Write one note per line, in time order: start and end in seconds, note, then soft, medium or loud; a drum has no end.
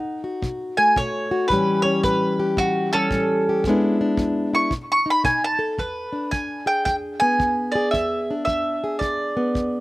0.00 0.39 B2 medium
0.00 1.49 D#4 medium
0.00 0.20 F#5 medium
0.24 1.30 F#4 medium
0.42 0.92 B2 medium
0.42 kick medium
0.77 1.48 A3 medium
0.77 0.96 G#5 loud
0.96 1.47 B2 medium
0.96 1.47 C#5 medium
0.96 kick medium
1.31 1.48 F#4 medium
1.48 2.00 A2 medium
1.48 3.62 E3 medium
1.48 2.92 G3 medium
1.48 1.82 B4 loud
1.48 kick medium
1.53 1.84 C#4 medium
1.53 2.38 G4 medium
1.82 3.62 C#4 medium
1.82 2.02 C#5 loud
2.03 2.54 A2 medium
2.03 2.56 B4 loud
2.03 kick medium
2.39 3.46 G4 medium
2.57 3.07 A2 medium
2.57 2.91 F#4 loud
2.57 kick medium
2.93 3.66 G3 medium
2.93 3.96 C#4 medium
2.93 3.63 A4 loud
3.11 3.61 A2 medium
3.11 kick medium
3.49 3.64 G4 medium
3.64 4.15 E2 medium
3.64 4.71 G#3 medium
3.64 4.71 B3 medium
3.64 kick medium
3.69 4.00 D4 medium
3.69 4.52 E4 medium
4.01 4.70 D4 medium
4.17 4.68 E2 medium
4.17 kick medium
4.53 4.72 E4 medium
4.53 4.72 C#6 medium
4.71 5.22 B2 medium
4.71 kick medium
4.92 5.08 C#6 loud
5.06 5.77 D#4 medium
5.10 5.24 B5 loud
5.24 5.75 B2 medium
5.24 5.42 G#5 medium
5.24 kick medium
5.44 5.79 A5 loud
5.59 5.76 A4 medium
5.78 6.28 E2 medium
5.78 6.29 B4 medium
5.78 kick medium
6.13 7.96 D4 medium
6.31 6.82 E2 medium
6.31 6.67 G#5 loud
6.31 kick medium
6.66 7.75 G#4 medium
6.66 6.84 G5 medium
6.85 7.36 E2 medium
6.85 6.95 G5 loud
6.85 kick medium
7.20 9.36 B3 medium
7.20 7.76 G#5 loud
7.39 7.90 E2 medium
7.39 kick medium
7.72 8.34 G#4 medium
7.72 7.91 D5 medium
7.91 8.44 E2 medium
7.91 8.43 E5 medium
7.91 kick medium
8.31 9.80 D4 medium
8.45 8.99 E2 medium
8.45 8.97 E5 medium
8.45 kick medium
8.84 9.80 G#4 medium
8.99 9.52 E2 medium
8.99 9.80 D5 medium
8.99 kick medium
9.37 9.80 B3 medium
9.54 9.80 E2 medium
9.54 kick medium